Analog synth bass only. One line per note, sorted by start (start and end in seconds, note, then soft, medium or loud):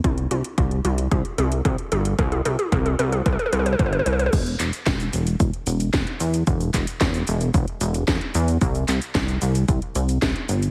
0.04 0.27 C2 loud
0.31 0.42 C2 medium
0.58 0.81 C2 loud
0.84 1.07 C2 loud
1.11 1.23 C2 medium
1.38 1.61 C2 medium
1.65 1.76 C2 medium
1.92 2.15 G1 medium
2.19 2.41 C2 medium
2.45 2.57 C2 medium
2.72 2.95 C2 loud
2.99 3.22 C2 loud
3.26 3.37 C2 medium
3.52 3.75 C2 medium
3.79 4.02 G1 loud
4.06 4.29 C2 loud
4.33 4.56 E1 medium
4.60 4.71 E1 medium
4.86 5.09 E1 loud
5.13 5.36 E1 loud
5.40 5.51 E1 medium
5.67 5.90 E1 medium
5.94 6.05 E1 medium
6.20 6.43 E2 medium
6.47 6.70 E1 loud
6.74 6.85 E1 medium
7.01 7.23 E1 loud
7.27 7.50 E1 loud
7.54 7.66 E1 medium
7.81 8.04 E1 medium
8.08 8.19 E1 medium
8.35 8.57 E2 medium
8.61 8.84 C2 loud
8.88 9.00 C2 medium
9.15 9.38 C2 loud
9.42 9.65 C2 loud
9.69 9.80 C2 medium
9.95 10.18 C2 loud
10.22 10.33 C2 medium
10.49 10.71 G1 medium